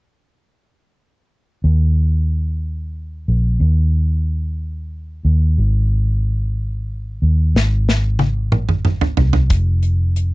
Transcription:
1.64 D#2
3.28 A#1
3.60 D#2
5.25 D#2
5.58 G#1
7.22 D#2
7.55 G#1, snare
7.89 snare
8.19 high tom
8.52 mid tom
8.69 mid tom
8.85 mid tom
9.01 floor tom
9.17 C2, floor tom
9.33 floor tom
9.50 F1, kick, closed hi-hat
9.83 closed hi-hat
10.16 closed hi-hat

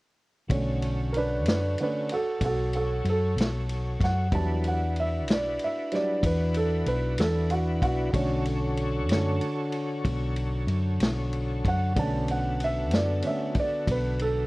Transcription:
0.48 B1 D3 A3 C#4 F#4 A4 C#5, kick, ride
0.82 ride
1.12 A#4, ride
1.17 D4 B4
1.45 F#2 D4, snare, ride
1.50 B4
1.78 D3 A3 C#4, ride
1.82 D4 B4
2.09 F#4, ride
2.14 A4
2.41 B1 F#4, kick, ride
2.46 A4
2.73 F#4 A4, ride
3.05 F#2, ride
3.10 A4
3.36 B1, ride
3.41 snare
3.69 ride
4.00 F#2, kick, ride
4.04 F#5, snare
4.32 E2 F#3 G3 D4 E4 F#4 B4 A5, kick, ride
4.64 F#5, ride
4.96 E5, ride
5.26 B1, snare, ride
5.32 D5
5.59 ride
5.64 E5
5.91 F#3 G3 D4 D5, snare, ride
6.23 E2 B4, kick, ride
6.54 A4, ride
6.86 B1 B4, ride
7.18 E2 A4, snare, ride
7.50 F#4, ride
7.82 B1 F#4, kick, ride
8.13 B1 D3 A3 C#4 F#4 A4 C#5, kick, ride
8.45 ride
8.77 ride
9.09 F#2 D3 A3 C#4, snare, ride
9.41 ride
9.72 ride
10.05 B1, kick, ride
10.36 ride
10.67 F#2, ride
11.00 B1, snare, ride
11.33 ride
11.65 F#2 F#5, kick, ride
11.95 B1 D3 A3 B3 C#4 F#4 A4, kick, ride
11.99 A5
12.28 F#5, ride
12.60 ride
12.64 E5
12.91 F#2 D5, snare, ride
13.22 D3 A3 C#4, ride
13.27 E5
13.55 kick, ride
13.59 D5
13.87 B1 B4, kick, ride
14.19 A4, ride

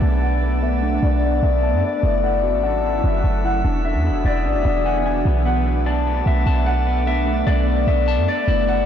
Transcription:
Already playing: A3 B3 D4 A4 D5 E5 F#5 A5
0.02 B1 A5
0.21 B3 F#5
0.42 B3
0.62 B3 E5
0.83 D4
1.02 B1 D5
1.23 B3
1.43 B1 B3 E5
1.63 A5
1.73 F#2
1.83 B3 D5
2.03 F#1 F#3 A3 C#4 E4 F#4 A4 E5
2.23 E4 F#5
2.43 F#4
2.54 G#1
2.63 F#5 A5
2.84 E4
3.04 F#1 E4 E5
3.24 F#1 A5
3.44 E4 F#5
3.64 E1 E3 B3 D4 F#4 G#4
3.85 D4 E5
3.95 E2
4.05 E4
4.10 E1
4.25 E1 D5 E5
4.45 G#1 D4
4.55 E1
4.65 E1 D4 E5
4.85 F#5 G#5
5.05 D4 G#5
5.25 B1 A3 B3 A4 D5
5.45 B3 F#5
5.66 D4
5.86 D5 A5
6.07 B3
6.26 B1 B3 E5
6.46 B1 A5
6.66 B3 F#5
6.86 B3
7.07 B3 E5
7.27 D4
7.46 B1 D5
7.68 B3
7.87 B1 B3 E5
8.08 A5
8.18 F#2
8.28 B3 D5
8.47 F#1 F#3 A3 C#4 E4 F#4 A4 E5
8.68 E4 F#5

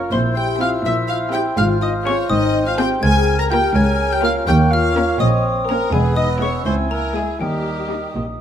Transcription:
Already playing: A#4 C#6
0.11 A#1 A#2 C4 E4 C5 C6 E6
0.36 G4 G5 G6
0.60 C4 E4 F4 G4 F5 F6
0.84 A#1 A#2 E4 E5 E6
1.09 F4 F5 F6
1.32 C4 E4 G4 G5 G6
1.56 G#1 G#2 F4 F5 F6
1.81 D#4 D#5 D#6
2.05 C4 C#4 F4 G#4 C#5 C#6
2.30 G#1 G#2 C4 D#4 D#5 D#6
2.66 F4 F5 F6
2.78 C4 F4 G4 G#4 G5 G6
3.02 C#2 G#4 A#4 G#5 F6 G#6
3.39 A#4 A#5 A#6
3.50 A#3 F4 G4 A#4 G5 G6
3.75 C#2 C#4 G#4 G#5 G#6
4.11 G4 G5 G6
4.23 A#3 F4 A#4 F5 F6
4.47 D#2 A#3 G4 C#5 G5 G6
4.71 F4 F5 F6
4.95 A#3 C#4 A#4
5.19 A#1 A#2 C4 D#4 D#5 D#6
5.68 A#3 C#4 A#4 A#5
5.92 E1 E2 G#3 B3 G#4 B4 G#5 E6
6.16 D#4 D#5 D#6
6.41 G#3 B3 C#4 E4 C#5 C#6
6.65 C#2 C4 E4 C5 G#5 C6
6.90 A#3 A#4 A#5
7.15 G#3 A#3 E4 G#4 G#5
7.40 D#2 G3 D#4 G4 A#4 G5 D#6
7.90 G3 A#3 D#4
8.15 A#1 A#2 D#5

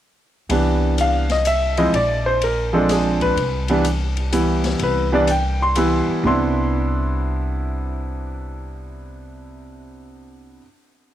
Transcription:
0.49 C2 E3 G3 B3 D4, ride
0.98 F5, hi-hat pedal, ride
1.30 D#5, snare, ride
1.45 E5, hi-hat pedal, ride
1.77 F3 G#3 C4 E4 D#5, ride
1.93 A#1 D5, ride
2.26 C5
2.42 A#4, ride
2.73 F3 G#3 C4 D4 A4
2.89 G#4, snare, hi-hat pedal, ride
3.21 B4, kick, ride
3.36 C2, ride
3.68 E3 G3 B3 D4, ride
3.85 hi-hat pedal, ride
4.17 ride
4.32 E3 G3 B3 E4, hi-hat pedal, ride
4.64 snare, ride
4.79 C2, ride
4.83 B4
5.12 E3 G3 B3 D4 D5
5.27 G5, hi-hat pedal, ride
5.62 C6
5.76 E3 G3 B3 E4, hi-hat pedal, ride
6.07 muted upright bass stroke
6.23 C2 C3 B3 D4 E4 C6

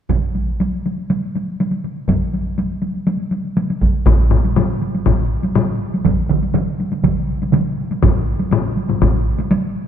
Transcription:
0.10 taiko, taiko high
0.22 taiko high
0.35 taiko high
0.48 taiko high
0.60 taiko high
0.73 taiko high
0.86 taiko high
0.98 taiko high
1.10 taiko high
1.23 taiko high
1.36 taiko high
1.48 taiko high
1.60 taiko high
1.71 taiko high
1.84 taiko high
1.97 taiko high
2.08 taiko, taiko high
2.22 taiko high
2.34 taiko high
2.45 taiko high
2.58 taiko high
2.70 taiko high
2.82 taiko high
2.94 taiko high
3.07 taiko high
3.19 taiko high
3.31 taiko high
3.44 taiko high
3.57 taiko high
3.70 taiko high
3.82 taiko, taiko high
3.95 taiko high
4.06 taiko, taiko low-mid, taiko high
4.31 taiko low-mid
4.45 taiko high
4.56 taiko low-mid, taiko high
4.82 taiko high
4.95 taiko high
5.06 taiko, taiko low-mid, taiko high
5.43 taiko high
5.55 taiko low-mid, taiko high
5.94 taiko high
6.05 taiko, taiko mid, taiko high
6.29 taiko mid
6.43 taiko high
6.54 taiko mid, taiko high
6.80 taiko high
6.92 taiko high
7.03 taiko, taiko mid, taiko high
7.42 taiko high
7.52 taiko mid, taiko high
7.91 taiko high
8.02 taiko, taiko low-mid, taiko high
8.40 taiko high
8.51 taiko low-mid, taiko high
8.77 taiko high
8.89 taiko low-mid, taiko high
9.02 taiko, taiko low-mid, taiko high
9.39 taiko high
9.51 taiko high

